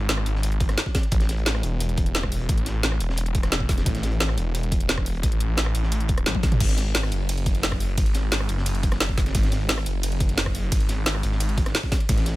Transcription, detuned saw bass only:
0.00 0.25 G#1 medium
0.26 0.76 G#1 loud
1.12 1.62 A1 medium
1.63 2.48 E1 loud
2.49 2.99 A1 medium
3.00 3.85 E1 loud
3.86 4.36 A1 loud
4.38 5.22 E1 loud
5.23 5.73 A1 loud
5.75 6.25 A1 medium
6.26 6.59 A1 medium
6.60 7.11 G#1 loud
7.12 7.96 F#1 loud
7.98 8.48 G#1 loud
8.49 9.33 F#1 loud
9.35 9.85 G#1 medium
9.86 10.70 F#1 loud
10.72 11.22 G#1 loud
11.23 11.73 G#1 loud
12.09 12.36 A1 medium

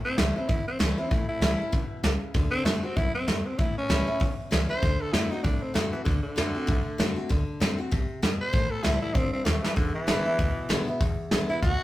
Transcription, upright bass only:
0.18 0.32 C#2 medium
0.49 0.64 G1 medium
0.67 muted upright bass stroke medium
0.80 0.94 C#2 medium
1.11 1.26 A1 medium
1.28 muted upright bass stroke medium
1.40 1.55 C#2 medium
1.59 muted upright bass stroke medium
1.73 1.87 G1 medium
1.90 muted upright bass stroke medium
2.03 2.17 C#2 loud
2.35 2.49 D2 loud
2.65 2.79 F#2 medium
2.97 3.11 C2 medium
3.14 muted upright bass stroke medium
3.27 3.42 F#2 medium
3.59 3.73 A1 medium
3.89 4.04 C#2 loud
4.08 muted upright bass stroke medium
4.21 4.35 G1 medium
4.39 muted upright bass stroke medium
4.52 4.66 C#2 medium
4.71 muted upright bass stroke medium
4.83 4.97 D2 medium
5.13 5.28 F#2 loud
5.32 muted upright bass stroke medium
5.45 5.59 C2 medium
5.63 muted upright bass stroke medium
5.75 5.89 F#2 medium
5.94 muted upright bass stroke medium
6.07 6.21 D2 medium
6.38 6.52 F#2 medium
6.55 muted upright bass stroke medium
6.68 6.82 C2 medium
6.87 muted upright bass stroke medium
6.99 7.13 F#2 medium
7.30 7.44 D2 medium
7.60 7.75 F#2 medium
7.79 muted upright bass stroke medium
7.92 8.06 C2 medium
8.23 8.37 F#2 loud
8.54 8.68 A1 medium
8.72 muted upright bass stroke medium
8.85 8.99 C#2 medium
9.15 9.30 G1 medium
9.34 muted upright bass stroke medium
9.46 9.60 D#2 medium
9.77 9.91 E1 loud
10.07 10.22 G#1 medium
10.26 muted upright bass stroke medium
10.39 10.53 D2 medium
10.69 10.84 G#1 medium
10.88 muted upright bass stroke medium
11.01 11.15 E1 loud
11.32 11.46 G#1 loud
11.50 muted upright bass stroke medium
11.62 11.77 D2 medium

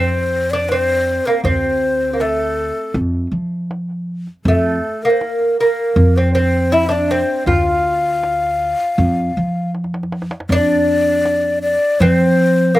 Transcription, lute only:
0.00 0.52 C4 medium
0.53 0.71 D4 medium
0.72 1.23 C4 medium
1.27 1.44 A#3 medium
1.45 2.13 C4 medium
2.13 2.20 A#3 soft
2.21 2.92 A3 medium
4.48 5.05 A3 medium
5.05 5.59 A#3 medium
5.61 6.17 A#3 medium
6.17 6.34 C4 medium
6.35 6.74 C4 medium
6.72 6.88 E4 medium
6.89 7.10 D4 medium
7.11 7.49 C4 medium
7.47 9.70 F4 medium
10.52 12.01 D4 loud
12.02 12.74 C4 medium
12.75 12.80 A#3 medium

